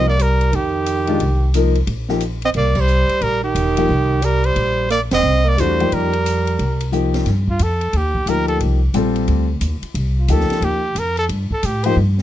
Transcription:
Already playing: C2
0.07 A#3 D5
0.19 G3 A#4, hi-hat pedal, ride
0.41 ride
0.52 F2 D#3 G4, ride
0.86 hi-hat pedal, ride
1.07 D#3 G#3 D4 F4, ride
1.20 C2, ride
1.54 F3 A#3 D#4 A#4, hi-hat pedal, ride
1.75 ride
1.87 A#1, ride
2.09 F3 A#3 D#4 G4, snare
2.20 hi-hat pedal, ride
2.42 C4 D#5, ride
2.54 C2 A#3 D5, ride
2.75 G3, kick, crash
2.80 C5
2.88 hi-hat pedal
3.09 muted upright bass stroke, ride
3.21 A#1 G3 A#4, ride
3.43 D#3 G4
3.55 E1, hi-hat pedal, ride
3.77 F3 A#3 D#4 G4, ride
3.89 C2
4.22 G3 A#4, hi-hat pedal, ride
4.44 G3 C5, ride
4.56 A#1, ride
4.90 A#3 D5, hi-hat pedal, ride
5.11 E1 C4 D#5, snare, ride
5.23 C2
5.45 A#3 D5
5.57 E2 E3 G3 A3 D4 F#4 C5, hi-hat pedal, ride
5.80 F3 A#3 D#4 G4, ride
5.91 F2 G3 A#4, ride
6.13 ride
6.26 hi-hat pedal, ride
6.47 ride
6.59 C2, ride
6.80 ride
6.92 F3 A#3 D#4 G4, hi-hat pedal
7.14 snare, ride
7.26 G2, snare, ride
7.48 F4, kick
7.59 F2 A4, hi-hat pedal, ride
7.81 ride
7.93 D#2 G4, ride
8.15 kick
8.26 D2 F3 A#3 D#4 G4 A#4, hi-hat pedal, ride
8.48 A4, ride
8.60 C2, ride
8.94 A#1 G3 C4 F4 A4, hi-hat pedal, ride
9.16 ride
9.28 D2, ride
9.61 D#2, hi-hat pedal, ride
9.82 muted upright bass stroke, ride
9.94 C2, ride
10.19 F4
10.28 D2 F3 A#3 D#4 G4 A4, hi-hat pedal, ride
10.40 snare
10.50 muted upright bass stroke, snare, ride
10.61 D#2 G4, ride
10.95 F2 A#4, hi-hat pedal, ride
11.17 A4, ride
11.29 G2, ride
11.51 A4, muted upright bass stroke, kick
11.63 A2 G4, hi-hat pedal, ride
11.84 F3 A#3 D#4 G4 C5, ride
11.96 G2
12.18 snare

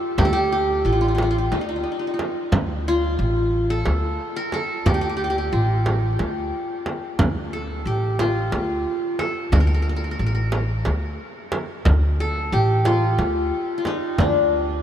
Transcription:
Already playing: F4 G4 A4
0.18 D2 G4, frame drum
0.25 A4
0.33 G4
0.52 G4
0.85 A1 F4
0.92 F4
1.01 F4
1.08 F4
1.15 F4, frame drum
1.22 F4
1.31 F4
1.38 F4
1.52 D2 D#4, frame drum
1.61 D#4
1.69 D#4
1.76 D#4
1.84 D#4
1.92 D#4
1.99 D#4
2.07 D#4
2.14 D#4
2.19 frame drum
2.52 D2, frame drum
2.88 F4
3.19 A1
3.70 A4
3.86 D2, frame drum
4.36 A#4
4.52 A4, frame drum
4.86 D2 G4, frame drum
4.94 G4
5.01 G4
5.09 G4
5.17 G4
5.24 G4
5.30 G4
5.38 G4
5.52 A1 F4
5.86 frame drum
6.19 D2, frame drum
6.86 frame drum
7.19 D2, frame drum
7.53 A4
7.85 A1 G4
8.19 F4, frame drum
8.52 D2, frame drum
9.19 A4, frame drum
9.52 D2 A#4, frame drum
9.60 A#4
9.67 A#4
9.74 A#4
9.82 A#4
9.89 A#4
9.96 A#4
10.04 A#4
10.11 A#4
10.19 A1 A#4
10.26 A#4
10.35 A#4
10.52 frame drum
10.85 D2, frame drum
11.52 frame drum
11.85 D2, frame drum
12.20 A4
12.52 A1 G4
12.85 F4, frame drum
13.18 D2, frame drum
13.78 F4
13.85 D#4, frame drum
14.18 D2 D4, frame drum

